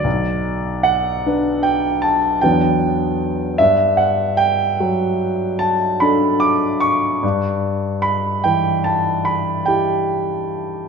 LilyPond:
\new Staff \with { instrumentName = "Grand piano" } { \time 9/8 \key e \dorian \tempo 4. = 50 << { d''4 fis''4 g''8 a''8 g''4 r8 | e''8 fis''8 g''4. a''8 b''8 d'''8 cis'''8~ | cis'''4 b''8 g''8 a''8 b''8 g''4. | } \\ { b,,4. <d' b'>4. <e, fis b d' b'>4. | g,4. fis4. <d' a'>4. | g,4. e4. <e' g'>4. | } >> }